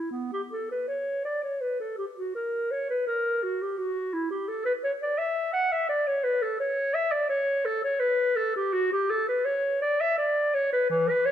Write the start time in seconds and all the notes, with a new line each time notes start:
0.11 B3
0.33 G4
0.51 A4
0.71 B4
0.88 C#5
1.25 D5
1.43 C#5
1.61 B4
1.80 A4
1.98 G4
2.17 F#4
2.35 A#4
2.71 C#5
2.89 B4
3.07 A#4
3.43 F#4
3.62 G4
3.78 F#4
4.13 E4
4.30 G4
4.48 A4
4.65 B4
4.84 C#5
5.02 D5
5.18 E5
5.53 F#5
5.72 E5
5.89 D5
6.07 C#5
6.24 B4
6.42 A4
6.60 C#5
6.94 E5
7.11 D5
7.29 C#5
7.65 A4
7.84 C#5
8.00 B4
8.36 A4
8.56 G4
8.73 F#4
8.92 G4
9.10 A4
9.28 B4
9.45 C#5
9.81 D5
10.01 E5
10.18 D5
10.54 C#5
10.73 B4
10.90 E3
11.09 B4
11.26 C#5